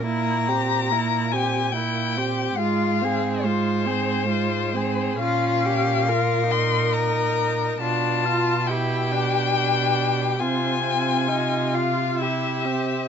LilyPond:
<<
  \new Staff \with { instrumentName = "Violin" } { \time 3/4 \key f \minor \tempo 4 = 70 bes''4. aes''8 g''4 | f''4 c''2 | f''4. c'''8 bes''4 | a''4 g''2 |
aes''4. f''8 e''4 | }
  \new Staff \with { instrumentName = "Violin" } { \time 3/4 \key f \minor e'8 g'8 e'8 g'8 e'8 g'8 | f'8 aes'8 f'8 aes'8 f'8 aes'8 | f'8 g'8 bes'2 | f'4 g'4 g'4 |
f'8 f'8 ees'8 f'8 g'4 | }
  \new Staff \with { instrumentName = "Viola" } { \time 3/4 \key f \minor bes8 c'8 bes8 c'8 bes8 c'8 | aes8 c'8 aes8 c'8 aes8 c'8 | des'4 f'8 ees'4. | d'8 f'8 e'8 d'4. |
c'4 f'4 e'8 c'8 | }
  \new Staff \with { instrumentName = "Cello" } { \clef bass \time 3/4 \key f \minor bes,2. | aes,2. | bes,2. | b,2. |
c2. | }
>>